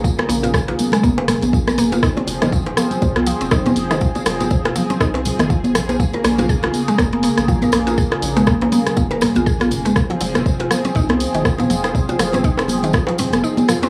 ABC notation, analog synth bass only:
X:1
M:4/4
L:1/16
Q:"Swing 16ths" 1/4=121
K:Bbm
V:1 name="Analog synth bass" clef=bass
z2 B,,,2 z B,,, z2 F,,,2 z B,,,3 F,,,2 | z2 F,,,2 z F,,, z2 C,,2 z F,,,2 z F,,,2 | z2 F,,,2 z F,,, z2 C,,2 z F,,,3 B,,,2 | z2 B,,,2 z B,,, z2 F,,,2 z B,,,2 z B,,,2 |
z2 B,,,2 z B,,, z2 F,,,2 z B,,,3 F,,,2 | z2 F,,,2 z F,,, z2 C,,2 z F,,,2 z F,,,2 | z2 F,,,2 z F,,,3 C,, z2 F,,, z4 |]